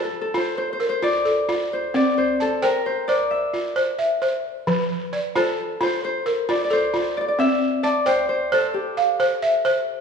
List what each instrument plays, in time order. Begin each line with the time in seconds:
Already playing: balafon F4 C5 D5
0.04 harp A4
0.21 harp A4
0.34 balafon F4, harp C5
0.58 harp C5
0.73 harp C5
0.80 balafon A#4
0.89 harp C5
1.02 balafon F4, harp D5
1.25 balafon A4
1.49 balafon F4
1.73 harp C5
1.94 balafon C4, harp D5
2.18 harp C5
2.40 harp A4, balafon A5
2.62 harp A#4, balafon C5 G5
2.86 harp C5
3.08 balafon C5, harp D5
3.31 harp E5
3.53 balafon F4
3.76 balafon C5
3.99 balafon E5
4.22 balafon C5
4.67 balafon F3
5.13 balafon D5
5.36 balafon F4 C5, harp A4
5.81 balafon F4, harp C5
6.04 harp C5
6.26 balafon A#4
6.49 balafon F4, harp D5
6.64 harp D5
6.70 balafon A4, harp C5
6.94 balafon F4
7.17 harp D5
7.28 harp D5
7.39 balafon C4, harp E5
7.83 harp D5, balafon A5
8.06 balafon C5 G5, harp C5
8.29 harp C5
8.52 harp A4, balafon C5
8.74 harp G4
8.97 balafon F5
9.20 balafon C5
9.42 balafon E5
9.65 balafon C5